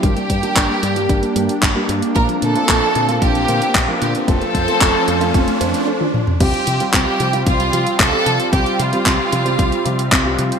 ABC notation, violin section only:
X:1
M:4/4
L:1/8
Q:1/4=113
K:Cmix
V:1 name="Violin section"
[Gg]6 z2 | [Bb] [Aa]3 [Gg]3 [Gg] | [Aa]6 z2 | [Gg]2 [Gg]2 [Ff]2 [Aa]2 |
[Gg] [Ff]6 z |]